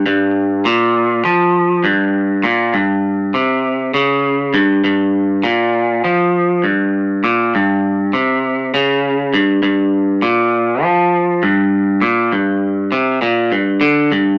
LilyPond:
\new Staff \with { instrumentName = "Clean electric guitar" } { \clef bass \time 4/4 \key c \major \tempo 4 = 100 g,4 bes,4 f4 g,4 | bes,8 g,4 c4 cis4 g,8 | g,4 bes,4 f4 g,4 | bes,8 g,4 c4 cis4 g,8 |
g,4 bes,4 f4 g,4 | bes,8 g,4 c8 bes,8 g,8 d8 g,8 | }